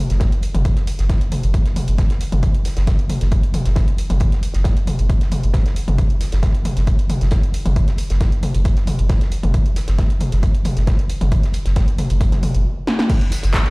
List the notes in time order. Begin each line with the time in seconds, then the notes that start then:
0.10 F#1, snare, closed hi-hat
0.20 kick, snare, closed hi-hat
0.32 F#1, closed hi-hat
0.42 closed hi-hat, open hi-hat
0.54 F#1, closed hi-hat, mid tom
0.65 kick, closed hi-hat
0.76 F#1, snare, closed hi-hat
0.87 closed hi-hat, open hi-hat
0.99 F#1, snare, closed hi-hat
1.10 kick, snare, closed hi-hat
1.21 F#1, closed hi-hat
1.32 closed hi-hat, open hi-hat, mid tom
1.43 F#1, closed hi-hat
1.54 kick, closed hi-hat
1.65 F#1, snare, closed hi-hat
1.76 closed hi-hat, open hi-hat, mid tom
1.88 F#1, closed hi-hat
1.98 kick, snare, closed hi-hat
2.10 F#1, snare, closed hi-hat
2.21 closed hi-hat, open hi-hat
2.32 F#1, closed hi-hat, mid tom
2.43 kick, closed hi-hat
2.54 F#1, closed hi-hat
2.65 snare, closed hi-hat, open hi-hat
2.77 F#1, snare, closed hi-hat
2.87 kick, snare, closed hi-hat
2.99 F#1, closed hi-hat
3.10 closed hi-hat, open hi-hat, mid tom
3.21 F#1, snare, closed hi-hat
3.32 kick, closed hi-hat
3.43 F#1, closed hi-hat
3.54 closed hi-hat, open hi-hat, mid tom
3.65 F#1, snare, closed hi-hat
3.76 kick, snare, closed hi-hat
3.88 F#1, closed hi-hat
3.98 closed hi-hat, open hi-hat
4.10 F#1, closed hi-hat, mid tom
4.20 kick, closed hi-hat
4.32 F#1, snare, closed hi-hat
4.43 closed hi-hat, open hi-hat
4.54 F#1, snare, closed hi-hat
4.64 kick, snare, closed hi-hat
4.77 F#1, closed hi-hat
4.87 closed hi-hat, open hi-hat, mid tom
4.99 F#1, closed hi-hat
5.10 kick, closed hi-hat
5.21 F#1, snare, closed hi-hat
5.31 closed hi-hat, open hi-hat, mid tom
5.43 F#1, closed hi-hat
5.54 kick, snare, closed hi-hat
5.66 F#1, snare, closed hi-hat
5.76 closed hi-hat, open hi-hat
5.88 F#1, closed hi-hat, mid tom
5.98 kick, closed hi-hat
6.10 F#1, closed hi-hat
6.21 snare, closed hi-hat, open hi-hat
6.32 F#1, snare, closed hi-hat
6.43 kick, snare, closed hi-hat
6.54 F#1, closed hi-hat
6.65 closed hi-hat, open hi-hat, mid tom
6.77 F#1, snare, closed hi-hat
6.87 kick, closed hi-hat
6.99 F#1, closed hi-hat
7.10 closed hi-hat, open hi-hat, mid tom
7.21 F#1, snare, closed hi-hat
7.31 kick, snare, closed hi-hat
7.43 F#1, closed hi-hat
7.54 closed hi-hat, open hi-hat
7.66 F#1, closed hi-hat, mid tom
7.76 kick, closed hi-hat
7.88 F#1, snare, closed hi-hat
7.98 closed hi-hat, open hi-hat
8.10 F#1, snare, closed hi-hat
8.21 kick, snare, closed hi-hat
8.32 F#1, closed hi-hat
8.43 closed hi-hat, open hi-hat, mid tom
8.54 F#1, closed hi-hat
8.65 kick, closed hi-hat
8.76 F#1, snare, closed hi-hat
8.87 closed hi-hat, open hi-hat, mid tom
8.99 F#1, closed hi-hat
9.09 kick, snare, closed hi-hat
9.21 F#1, snare, closed hi-hat
9.31 closed hi-hat, open hi-hat
9.43 F#1, closed hi-hat, mid tom
9.54 kick, closed hi-hat
9.66 F#1, closed hi-hat
9.76 snare, closed hi-hat, open hi-hat
9.88 F#1, snare, closed hi-hat
9.99 kick, snare, closed hi-hat
10.10 F#1, closed hi-hat
10.20 closed hi-hat, open hi-hat, mid tom
10.32 F#1, snare, closed hi-hat
10.43 kick, closed hi-hat
10.55 F#1, closed hi-hat
10.65 closed hi-hat, open hi-hat, mid tom
10.77 F#1, snare, closed hi-hat
10.87 kick, snare, closed hi-hat
10.99 F#1, closed hi-hat
11.09 closed hi-hat, open hi-hat
11.21 F#1, closed hi-hat, mid tom
11.32 kick, closed hi-hat
11.43 F#1, snare, closed hi-hat
11.53 closed hi-hat, open hi-hat
11.65 F#1, snare, closed hi-hat
11.76 kick, snare, closed hi-hat
11.88 F#1, closed hi-hat
11.98 closed hi-hat, open hi-hat, mid tom
12.10 F#1, closed hi-hat
12.21 kick, closed hi-hat
12.32 F#1, snare, closed hi-hat, mid tom
12.43 open hi-hat, mid tom
12.55 F#1, closed hi-hat
12.87 snare
12.99 snare
13.10 kick, closed hi-hat, crash, tambourine
13.21 F#1, closed hi-hat
13.31 snare, closed hi-hat, open hi-hat, tambourine
13.43 F#1, snare, closed hi-hat, tambourine
13.53 kick, snare, clap, closed hi-hat, tambourine
13.66 F#1, closed hi-hat